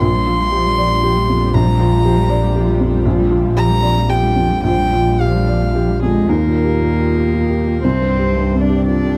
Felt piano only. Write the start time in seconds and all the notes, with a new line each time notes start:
0.02 A#1
0.26 F4
0.51 G4
0.78 D5
1.03 G4
1.29 F2
1.54 A#1
1.79 F4
2.05 G4
2.30 D5
2.55 G4
2.80 F2
3.05 A#1
3.31 F4
3.56 G4
3.83 D5
4.09 G4
4.36 F2
4.64 A#1
4.92 F4
5.20 G4
5.48 D5
5.75 G4
6.02 F2
6.29 D#2
6.47 A#2
6.64 G4
6.82 A#2
7.00 F4
7.17 G4
7.34 F4
7.50 G4
7.67 F4
7.84 C2
8.01 G2
8.19 G4
8.37 G2
8.53 C4
8.70 G4
8.87 F4
9.04 G4